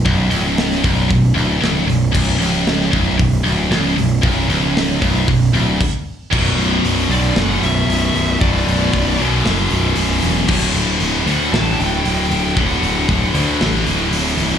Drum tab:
CC |----------------|x---------------|------------x---|x---------------|
HH |o-o-o-o-o-o-o-o-|--o-o-o-o-o-o-o-|o-o-o-o-o-o-----|--o-o-o-o-o-o-o-|
SD |----oo------o---|----oo------o---|----o-----------|--------o-------|
BD |o-----o-o-------|o-----o-o-------|o-----o-o---o---|o---------------|

CC |----------------|x---------------|----------------|
HH |o-o-o-o-o-o-o-o-|--o-o-o-o-o-o-o-|o-o-o-o-o-o-o-o-|
SD |--------o-------|--------o-------|--------o-------|
BD |o---o-----------|o---------------|o---o-----------|